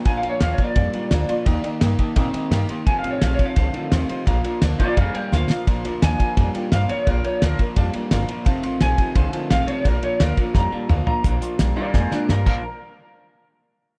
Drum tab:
CC |--------|--------|--------|--------|
RD |xxxxxxxx|xxxxxxxx|xxxxxxxx|xxxxxx--|
HH |--------|--------|--------|--------|
SD |--o---o-|--o---o-|--o---o-|--o---oo|
T2 |--------|--------|--------|--------|
FT |--------|--------|--------|--------|
BD |o--oo---|o--oo---|o--oo---|o--oo---|

CC |--------|--------|--------|--------|
RD |xxxxxxxx|xxxxxxxx|xxxxxxxx|xxxx----|
HH |--------|--------|--------|--------|
SD |--o---o-|--o---o-|--o---o-|--o-o---|
T2 |--------|--------|--------|------o-|
FT |--------|--------|--------|-------o|
BD |o--oo---|o--oo---|o--oo---|o--oo---|

CC |-------x|--------|
RD |--------|--------|
HH |xxx-----|--------|
SD |--o-ooo-|--------|
T2 |--------|--------|
FT |--------|--------|
BD |o---o--o|--------|